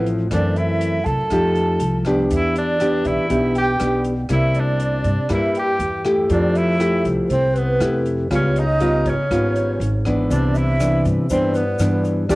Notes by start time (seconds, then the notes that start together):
Already playing: A1 A2 F3 C4 E4
0.06 closed hi-hat
0.31 F#2 E3 A3 C4 D4 D5, kick, cross-stick, closed hi-hat
0.55 E4 E5, closed hi-hat
0.81 closed hi-hat
1.04 C3 A4 A5, kick, closed hi-hat
1.30 F2 F3 A3 D#4 G4, kick, cross-stick, closed hi-hat
1.55 closed hi-hat
1.79 C2, closed hi-hat
2.05 B3 D4 G4, kick, cross-stick, closed hi-hat
2.30 E2 E3 E5, kick, closed hi-hat
2.36 E4
2.56 D4 D5, closed hi-hat
2.80 B3 D4 G4, cross-stick, closed hi-hat
3.05 B1 E4 E5, kick, closed hi-hat
3.29 B1 B2 B3 D4 G4, kick, closed hi-hat
3.55 G4 G5, closed hi-hat
3.80 B1 B3 D4 G4, cross-stick, closed hi-hat
4.04 closed hi-hat
4.29 C2 C3 G3 A#3 E4 E5, kick, cross-stick, closed hi-hat
4.54 D5, closed hi-hat
4.60 D4
4.80 closed hi-hat
5.04 G2, kick, closed hi-hat
5.29 G2 G3 A#3 E4 E5, kick, cross-stick, closed hi-hat
5.34 E4
5.55 G5, closed hi-hat
5.59 G4
5.79 E2, closed hi-hat
6.05 A3 E4 G4, cross-stick, closed hi-hat
6.30 F2 F3 D4 D5, kick, closed hi-hat
6.55 E4 E5, closed hi-hat
6.80 A3 E4 G4, cross-stick, closed hi-hat
7.05 C2, kick, closed hi-hat
7.29 C2 C3 C4 C5, kick, closed hi-hat
7.54 B3 B4, closed hi-hat
7.80 F2 A3 E4 G4, cross-stick, closed hi-hat
8.06 closed hi-hat
8.30 C#2 C#3 G3 B3 F4 C#5, kick, cross-stick, closed hi-hat
8.35 C#4
8.56 D#4 D#5, closed hi-hat
8.80 G3 B3 F4, closed hi-hat
9.06 G#1 C#5, kick, closed hi-hat
9.10 C#4
9.30 G#1 G#2 G3 B3 F4, kick, cross-stick, closed hi-hat
9.56 closed hi-hat
9.80 G#1, closed hi-hat
10.05 E3 B3 D4, kick, cross-stick, closed hi-hat
10.30 C2 C3 D4 D5, kick, closed hi-hat, shaker
10.55 E4 E5, closed hi-hat, shaker
10.80 E3 B3 D4, cross-stick, closed hi-hat, shaker
11.05 G2, kick, closed hi-hat, shaker
11.30 G2 E3 B3 C4 D4 C5, kick, closed hi-hat, shaker
11.54 B3 B4, closed hi-hat, shaker
11.79 G2 E3 B3 D4, cross-stick, closed hi-hat, shaker
12.04 closed hi-hat, shaker
12.29 E2 E3 A#3 D4 G4 D5, kick, cross-stick, closed hi-hat, shaker